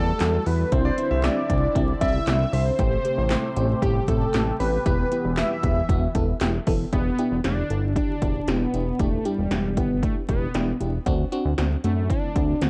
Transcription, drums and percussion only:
0.20 snare, clap, closed hi-hat
0.46 open hi-hat
0.72 kick, closed hi-hat
0.98 closed hi-hat
1.24 snare, clap, closed hi-hat
1.50 kick, closed hi-hat
1.75 kick, closed hi-hat
2.01 kick, closed hi-hat
2.27 snare, clap, closed hi-hat
2.53 open hi-hat
2.79 kick, closed hi-hat
3.05 closed hi-hat
3.30 snare, clap, closed hi-hat
3.56 closed hi-hat
3.82 kick, closed hi-hat
4.08 kick, closed hi-hat
4.34 snare, clap, closed hi-hat
4.60 open hi-hat
4.86 kick, closed hi-hat
5.12 closed hi-hat
5.37 snare, clap, closed hi-hat
5.63 kick, closed hi-hat
5.89 kick, closed hi-hat
6.15 kick, closed hi-hat
6.41 snare, clap, closed hi-hat
6.67 kick, open hi-hat
6.93 kick, closed hi-hat
7.18 closed hi-hat
7.44 snare, closed hi-hat
7.70 closed hi-hat
7.96 kick, closed hi-hat
8.22 kick, closed hi-hat
8.48 snare, closed hi-hat
8.74 closed hi-hat
8.99 kick, closed hi-hat
9.25 closed hi-hat
9.51 snare, closed hi-hat
9.77 kick, closed hi-hat
10.03 kick, closed hi-hat
10.29 kick, closed hi-hat
10.54 snare, closed hi-hat
10.81 closed hi-hat
11.06 kick, closed hi-hat
11.32 closed hi-hat
11.58 snare, closed hi-hat
11.84 closed hi-hat
12.10 kick, closed hi-hat
12.36 kick, closed hi-hat
12.61 snare, closed hi-hat

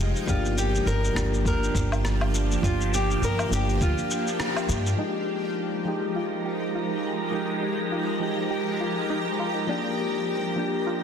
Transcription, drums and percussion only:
0.16 shaker
0.28 kick, shaker
0.45 shaker
0.58 shaker
0.75 shaker
0.87 shaker
1.04 shaker
1.16 kick, cross-stick, shaker
1.34 shaker
1.45 kick, shaker
1.63 shaker
1.75 kick, shaker
1.92 low woodblock, shaker
2.05 cross-stick, shaker
2.21 low woodblock
2.35 shaker
2.52 shaker
2.63 kick, shaker
2.81 shaker
2.94 shaker
3.11 shaker
3.23 shaker
3.39 low woodblock, shaker
3.52 shaker
3.69 shaker
3.81 kick, shaker
3.98 shaker
4.11 shaker
4.27 shaker
4.40 cross-stick, shaker
4.56 low woodblock, shaker
4.69 shaker
4.86 shaker

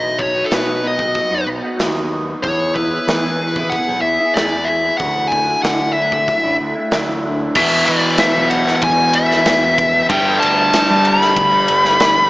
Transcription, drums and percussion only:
0.19 kick
0.51 snare, open hi-hat
0.99 kick
1.15 kick, open hi-hat
1.79 snare, open hi-hat
2.44 kick, open hi-hat
2.76 kick
3.08 snare, open hi-hat
3.56 kick
3.72 kick, open hi-hat
4.36 snare, open hi-hat
4.99 kick, open hi-hat
5.32 kick
5.64 snare, open hi-hat
6.12 kick
6.28 kick, open hi-hat
6.91 snare, open hi-hat
7.55 kick, crash
7.87 ride
8.18 snare, ride
8.51 ride
8.67 snare
8.82 kick, ride
9.13 ride
9.31 snare
9.46 snare, ride
9.78 kick, ride
10.10 kick, ride
10.42 ride
10.73 snare, ride
11.05 ride
11.21 snare
11.36 kick, ride
11.68 ride
11.85 snare
12.00 snare, ride

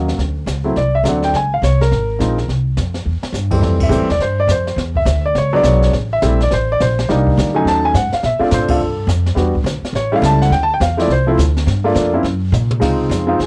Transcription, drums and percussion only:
0.08 snare
0.19 brush sweep, snare
0.47 snare, hi-hat pedal
0.76 brush sweep, snare
1.05 snare, hi-hat pedal
1.23 snare
1.34 brush sweep, snare
1.63 snare, hi-hat pedal
1.81 snare
1.92 brush sweep, snare
2.20 snare, hi-hat pedal
2.38 snare
2.49 brush sweep, snare
2.77 snare, hi-hat pedal
2.94 snare
3.23 snare
3.34 snare, hi-hat pedal
3.51 kick, crash
3.62 brush sweep, snare
3.80 kick, crash
3.91 hi-hat pedal
4.10 snare
4.20 brush sweep, snare
4.48 snare, hi-hat pedal
4.67 snare
4.78 brush sweep, snare
4.95 kick
5.06 snare, hi-hat pedal
5.35 brush sweep, snare
5.64 snare, hi-hat pedal
5.83 snare
5.93 brush sweep, snare
6.22 snare, hi-hat pedal
6.41 snare
6.51 brush sweep, snare
6.80 snare, hi-hat pedal
6.99 snare
7.09 brush sweep, snare
7.27 kick
7.39 snare, hi-hat pedal
7.67 brush sweep, snare
7.95 snare, hi-hat pedal
8.12 snare
8.23 brush sweep, snare
8.51 snare, hi-hat pedal
8.68 kick, crash
8.80 brush sweep
9.09 snare, hi-hat pedal
9.26 snare
9.37 brush sweep, snare
9.55 kick
9.66 snare, hi-hat pedal
9.85 snare
9.95 brush sweep, snare
10.23 snare, hi-hat pedal
10.42 snare
10.52 brush sweep, snare
10.81 snare, hi-hat pedal
10.99 snare
11.10 brush sweep, snare
11.39 snare, hi-hat pedal
11.57 snare
11.67 brush sweep, snare
11.95 snare, hi-hat pedal
12.24 brush sweep, snare
12.54 hi-hat pedal, mid tom
12.71 mid tom
12.81 brush sweep, kick, snare, crash
13.11 snare, hi-hat pedal
13.40 brush sweep, snare

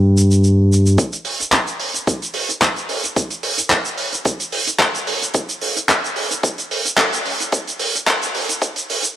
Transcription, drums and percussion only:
0.18 shaker
0.31 shaker
0.44 shaker
0.73 shaker
0.86 shaker
0.98 kick, closed hi-hat, shaker
1.13 closed hi-hat, shaker
1.25 open hi-hat
1.40 closed hi-hat, shaker
1.52 kick, clap, closed hi-hat, shaker
1.67 closed hi-hat, shaker
1.80 open hi-hat
1.94 closed hi-hat, shaker
2.07 kick, closed hi-hat, shaker
2.22 closed hi-hat, shaker
2.34 open hi-hat
2.49 closed hi-hat, shaker
2.61 kick, clap, closed hi-hat, shaker
2.76 closed hi-hat, shaker
2.89 open hi-hat
3.04 closed hi-hat, shaker
3.16 kick, closed hi-hat, shaker
3.30 closed hi-hat, shaker
3.43 open hi-hat
3.58 closed hi-hat, shaker
3.70 kick, clap, closed hi-hat, shaker
3.85 closed hi-hat, shaker
3.98 open hi-hat
4.13 closed hi-hat, shaker
4.25 kick, closed hi-hat, shaker
4.40 closed hi-hat, shaker
4.52 open hi-hat
4.67 closed hi-hat, shaker
4.79 kick, clap, closed hi-hat, shaker
4.95 closed hi-hat, shaker
5.07 open hi-hat
5.22 closed hi-hat, shaker
5.34 kick, closed hi-hat, shaker
5.49 closed hi-hat, shaker
5.61 open hi-hat
5.77 closed hi-hat, shaker
5.89 kick, clap, closed hi-hat, shaker
6.04 closed hi-hat, shaker
6.16 open hi-hat
6.31 closed hi-hat, shaker
6.43 kick, closed hi-hat, shaker
6.58 closed hi-hat, shaker
6.71 open hi-hat
6.85 closed hi-hat, shaker
6.97 kick, clap, closed hi-hat, shaker
7.13 closed hi-hat, shaker
7.25 open hi-hat
7.40 closed hi-hat, shaker
7.52 kick, closed hi-hat, shaker
7.67 closed hi-hat, shaker
7.79 open hi-hat
7.95 closed hi-hat, shaker
8.07 kick, clap, closed hi-hat, shaker
8.22 closed hi-hat, shaker
8.35 open hi-hat
8.49 closed hi-hat, shaker
8.62 kick, closed hi-hat, shaker
8.76 closed hi-hat, shaker
8.90 open hi-hat
9.03 closed hi-hat, shaker

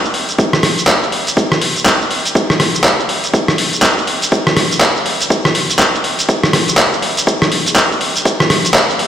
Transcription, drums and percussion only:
0.05 shaker
0.14 open hi-hat
0.29 closed hi-hat, shaker
0.39 kick, closed hi-hat, shaker
0.53 cross-stick, shaker
0.63 cross-stick, open hi-hat
0.78 closed hi-hat, shaker
0.87 kick, clap, closed hi-hat, shaker
1.03 shaker
1.12 open hi-hat
1.27 closed hi-hat, shaker
1.37 kick, closed hi-hat, shaker
1.52 cross-stick, shaker
1.61 open hi-hat
1.76 closed hi-hat, shaker
1.86 kick, clap, closed hi-hat, shaker
2.01 shaker
2.11 open hi-hat
2.25 closed hi-hat, shaker
2.35 kick, closed hi-hat, shaker
2.50 cross-stick, shaker
2.60 cross-stick, open hi-hat
2.75 closed hi-hat, shaker
2.84 kick, clap, closed hi-hat, shaker
3.00 shaker
3.09 open hi-hat
3.24 closed hi-hat, shaker
3.34 kick, closed hi-hat, shaker
3.48 cross-stick, shaker
3.58 open hi-hat
3.73 closed hi-hat, shaker
3.82 kick, clap, closed hi-hat, shaker
3.98 shaker
4.07 open hi-hat
4.22 closed hi-hat, shaker
4.32 kick, closed hi-hat, shaker
4.47 cross-stick, shaker
4.57 cross-stick, open hi-hat
4.71 closed hi-hat, shaker
4.81 kick, clap, closed hi-hat, shaker
4.96 shaker
5.06 open hi-hat
5.21 closed hi-hat, shaker
5.30 kick, closed hi-hat, shaker
5.45 cross-stick, shaker
5.55 open hi-hat
5.70 closed hi-hat, shaker
5.79 kick, clap, closed hi-hat, shaker
5.95 shaker
6.04 open hi-hat
6.19 closed hi-hat, shaker
6.29 kick, closed hi-hat, shaker
6.43 cross-stick, shaker
6.53 cross-stick, open hi-hat
6.68 closed hi-hat, shaker
6.77 kick, clap, closed hi-hat, shaker
6.93 shaker
7.02 open hi-hat
7.17 closed hi-hat, shaker
7.27 kick, closed hi-hat, shaker
7.42 cross-stick, shaker
7.52 open hi-hat
7.66 closed hi-hat, shaker
7.76 kick, clap, closed hi-hat, shaker
7.92 shaker
8.01 open hi-hat
8.16 closed hi-hat, shaker
8.25 kick, closed hi-hat, shaker
8.40 cross-stick, shaker
8.50 cross-stick, open hi-hat
8.65 closed hi-hat, shaker
8.74 kick, clap, closed hi-hat, shaker
8.90 shaker
8.99 open hi-hat

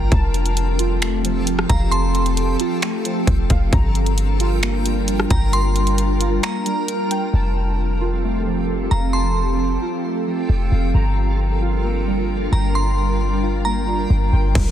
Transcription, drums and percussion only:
0.12 kick, closed hi-hat
0.34 closed hi-hat
0.46 closed hi-hat
0.57 closed hi-hat
0.79 closed hi-hat
1.02 finger snap, closed hi-hat
1.25 closed hi-hat
1.47 closed hi-hat
1.59 cross-stick
1.70 kick, closed hi-hat
1.92 closed hi-hat
2.15 closed hi-hat
2.26 closed hi-hat
2.37 closed hi-hat
2.60 closed hi-hat
2.82 finger snap, closed hi-hat
3.05 closed hi-hat
3.27 kick, closed hi-hat
3.50 kick, closed hi-hat
3.73 kick, closed hi-hat
3.95 closed hi-hat
4.06 closed hi-hat
4.18 closed hi-hat
4.40 closed hi-hat
4.63 finger snap, closed hi-hat
4.86 closed hi-hat
5.08 closed hi-hat
5.20 cross-stick
5.30 kick, closed hi-hat
5.53 closed hi-hat
5.76 closed hi-hat
5.87 closed hi-hat
5.98 closed hi-hat
6.21 closed hi-hat
6.43 finger snap, closed hi-hat
6.66 closed hi-hat
6.88 closed hi-hat
7.11 closed hi-hat
14.55 kick, closed hi-hat, crash

